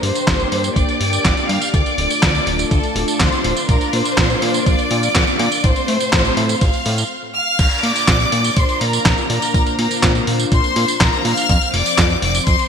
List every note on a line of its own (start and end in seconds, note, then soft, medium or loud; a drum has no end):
0.00 0.12 G2 medium
0.00 1.72 A#3 medium
0.00 1.72 D4 medium
0.00 1.72 G4 medium
0.00 0.72 C5 loud
0.00 5.60 D5 medium
0.00 0.73 C6 medium
0.00 open hi-hat loud
0.15 closed hi-hat soft
0.15 tambourine medium
0.27 0.45 G1 loud
0.27 kick loud
0.27 snare loud
0.27 clap medium
0.27 closed hi-hat medium
0.27 tambourine soft
0.40 closed hi-hat soft
0.40 tambourine soft
0.52 0.70 G2 medium
0.52 open hi-hat loud
0.64 closed hi-hat soft
0.64 tambourine medium
0.76 0.85 G1 medium
0.76 1.49 D5 loud
0.76 1.50 D6 medium
0.76 kick loud
0.76 closed hi-hat loud
0.76 tambourine soft
0.89 closed hi-hat soft
0.89 tambourine soft
1.01 1.19 G2 medium
1.01 open hi-hat loud
1.13 closed hi-hat soft
1.13 tambourine medium
1.25 1.34 G1 medium
1.25 kick loud
1.25 snare loud
1.25 clap medium
1.25 closed hi-hat medium
1.25 tambourine soft
1.37 closed hi-hat soft
1.37 tambourine soft
1.49 1.58 G2 loud
1.49 1.74 F5 loud
1.49 1.74 F6 medium
1.49 open hi-hat loud
1.62 closed hi-hat soft
1.62 tambourine medium
1.74 1.83 D2 loud
1.74 3.67 A3 medium
1.74 5.60 D4 medium
1.74 7.06 F4 medium
1.74 2.67 D5 loud
1.74 2.68 D6 medium
1.74 kick loud
1.74 closed hi-hat medium
1.74 tambourine soft
1.86 closed hi-hat soft
1.86 tambourine soft
1.98 2.07 D1 medium
1.98 open hi-hat loud
2.10 closed hi-hat soft
2.10 tambourine medium
2.22 2.41 D2 loud
2.22 kick loud
2.22 snare loud
2.22 clap medium
2.22 closed hi-hat medium
2.22 tambourine soft
2.35 closed hi-hat soft
2.35 tambourine soft
2.47 2.65 D1 medium
2.47 open hi-hat loud
2.59 closed hi-hat soft
2.59 tambourine medium
2.71 2.80 D2 medium
2.71 3.17 A4 loud
2.71 3.17 A5 medium
2.71 kick loud
2.71 closed hi-hat medium
2.71 tambourine soft
2.83 closed hi-hat soft
2.83 tambourine soft
2.95 3.05 D1 loud
2.95 open hi-hat loud
3.08 closed hi-hat soft
3.08 tambourine medium
3.20 3.29 D2 medium
3.20 3.69 C5 loud
3.20 3.69 C6 medium
3.20 kick loud
3.20 snare loud
3.20 clap medium
3.20 closed hi-hat medium
3.20 tambourine soft
3.32 closed hi-hat soft
3.32 tambourine soft
3.44 3.53 D1 medium
3.44 open hi-hat loud
3.57 closed hi-hat soft
3.57 tambourine medium
3.69 3.78 A#1 loud
3.69 5.62 A#3 medium
3.69 3.92 A#4 loud
3.69 3.92 A#5 medium
3.69 kick loud
3.69 closed hi-hat medium
3.69 tambourine soft
3.81 closed hi-hat soft
3.81 tambourine soft
3.93 4.02 A#2 medium
3.93 4.67 C5 loud
3.93 4.67 C6 medium
3.93 open hi-hat loud
4.05 closed hi-hat soft
4.05 tambourine medium
4.18 4.36 A#1 loud
4.18 kick loud
4.18 snare loud
4.18 clap medium
4.18 closed hi-hat medium
4.18 tambourine soft
4.30 closed hi-hat soft
4.30 tambourine soft
4.42 4.60 A#2 medium
4.42 open hi-hat loud
4.54 closed hi-hat soft
4.54 tambourine medium
4.66 4.75 A#1 medium
4.66 5.38 D5 loud
4.66 5.39 D6 medium
4.66 kick loud
4.66 closed hi-hat medium
4.66 tambourine soft
4.79 closed hi-hat soft
4.79 tambourine soft
4.91 5.09 A#2 medium
4.91 open hi-hat loud
5.03 closed hi-hat soft
5.03 tambourine medium
5.15 5.24 A#1 medium
5.15 kick loud
5.15 snare loud
5.15 clap medium
5.15 closed hi-hat medium
5.15 tambourine soft
5.27 closed hi-hat soft
5.27 tambourine soft
5.39 5.49 A#2 loud
5.39 5.62 D5 loud
5.39 5.63 D6 medium
5.39 open hi-hat loud
5.52 closed hi-hat soft
5.52 tambourine medium
5.64 5.73 A1 loud
5.64 7.09 A3 medium
5.64 7.09 C4 medium
5.64 7.09 C5 medium
5.64 6.62 C5 loud
5.64 6.62 C6 medium
5.64 kick loud
5.64 closed hi-hat medium
5.64 tambourine soft
5.76 closed hi-hat soft
5.76 tambourine soft
5.88 5.97 A2 medium
5.88 open hi-hat loud
6.00 closed hi-hat soft
6.00 tambourine medium
6.13 6.31 A1 loud
6.13 kick loud
6.13 snare loud
6.13 clap medium
6.13 closed hi-hat medium
6.13 tambourine medium
6.25 closed hi-hat soft
6.25 tambourine soft
6.37 6.55 A2 medium
6.37 open hi-hat loud
6.49 closed hi-hat soft
6.49 tambourine medium
6.61 6.71 A1 medium
6.61 7.10 F5 loud
6.61 7.11 F6 medium
6.61 kick loud
6.61 closed hi-hat medium
6.61 tambourine medium
6.74 closed hi-hat soft
6.74 tambourine soft
6.86 7.04 A2 medium
6.86 open hi-hat loud
6.98 closed hi-hat soft
6.98 tambourine medium
7.35 7.81 F5 medium
7.35 7.80 F6 loud
7.59 7.68 A#1 loud
7.59 11.46 A#3 medium
7.59 11.46 D4 medium
7.59 12.68 F4 medium
7.59 9.52 D5 loud
7.59 kick loud
7.59 closed hi-hat loud
7.59 crash loud
7.59 tambourine soft
7.71 closed hi-hat soft
7.71 tambourine soft
7.83 7.92 A#2 medium
7.83 8.57 D5 medium
7.83 8.57 D6 loud
7.83 open hi-hat loud
7.96 closed hi-hat soft
7.96 tambourine medium
8.08 8.26 A#1 loud
8.08 kick loud
8.08 snare loud
8.08 clap loud
8.08 closed hi-hat loud
8.08 tambourine soft
8.20 closed hi-hat soft
8.20 tambourine soft
8.32 8.50 A#2 medium
8.32 open hi-hat loud
8.44 closed hi-hat soft
8.44 tambourine medium
8.57 8.66 A#1 medium
8.57 8.82 C5 medium
8.57 8.81 C6 loud
8.57 kick loud
8.57 closed hi-hat medium
8.57 tambourine soft
8.69 closed hi-hat soft
8.69 tambourine soft
8.81 8.99 A#2 medium
8.81 9.30 A#4 medium
8.81 9.29 A#5 loud
8.81 open hi-hat loud
8.93 closed hi-hat soft
8.93 tambourine medium
9.05 9.14 A#1 medium
9.05 kick loud
9.05 snare loud
9.05 clap loud
9.05 closed hi-hat loud
9.05 tambourine soft
9.18 closed hi-hat soft
9.18 tambourine soft
9.30 9.39 A#2 loud
9.30 9.76 A#4 medium
9.30 9.75 A#5 loud
9.30 open hi-hat loud
9.42 closed hi-hat soft
9.42 tambourine medium
9.54 9.63 A#1 loud
9.54 11.47 C5 medium
9.54 kick loud
9.54 closed hi-hat loud
9.54 tambourine soft
9.67 closed hi-hat soft
9.67 tambourine soft
9.79 9.88 A#2 medium
9.79 10.24 A#4 medium
9.79 10.24 A#5 medium
9.79 open hi-hat loud
9.91 closed hi-hat soft
9.91 tambourine medium
10.03 10.21 A#1 loud
10.03 kick loud
10.03 snare loud
10.03 clap loud
10.03 closed hi-hat loud
10.03 tambourine medium
10.15 closed hi-hat soft
10.15 tambourine soft
10.27 10.45 A#2 medium
10.27 open hi-hat loud
10.40 closed hi-hat soft
10.40 tambourine medium
10.52 10.61 A#1 medium
10.52 10.98 C5 medium
10.52 10.97 C6 loud
10.52 kick loud
10.52 closed hi-hat medium
10.52 tambourine soft
10.64 closed hi-hat soft
10.64 tambourine soft
10.76 10.85 A#2 loud
10.76 open hi-hat loud
10.88 closed hi-hat soft
10.88 tambourine medium
11.00 11.10 A#1 medium
11.00 11.25 A#4 medium
11.00 11.25 A#5 loud
11.00 kick loud
11.00 snare loud
11.00 clap loud
11.00 closed hi-hat loud
11.00 tambourine medium
11.13 closed hi-hat soft
11.13 tambourine soft
11.25 11.34 A#2 loud
11.25 11.74 F5 loud
11.25 11.74 F6 loud
11.25 open hi-hat loud
11.37 closed hi-hat soft
11.37 tambourine medium
11.49 11.58 F2 loud
11.49 12.68 F3 medium
11.49 12.68 C4 medium
11.49 12.68 C5 medium
11.49 kick loud
11.49 closed hi-hat loud
11.49 tambourine medium
11.61 closed hi-hat soft
11.61 tambourine soft
11.73 11.83 F1 medium
11.73 12.19 D5 loud
11.73 12.19 D6 loud
11.73 open hi-hat loud
11.86 closed hi-hat soft
11.86 tambourine medium
11.98 12.16 F2 loud
11.98 kick loud
11.98 snare loud
11.98 clap loud
11.98 closed hi-hat loud
11.98 tambourine medium
12.10 closed hi-hat soft
12.10 tambourine soft
12.22 12.40 F1 medium
12.22 12.46 D5 medium
12.22 12.45 D6 loud
12.22 open hi-hat loud
12.35 closed hi-hat soft
12.35 tambourine medium
12.46 12.56 F2 medium
12.46 12.68 C5 medium
12.46 12.68 C6 loud
12.46 kick loud
12.46 closed hi-hat medium
12.46 tambourine soft
12.59 closed hi-hat soft
12.59 tambourine soft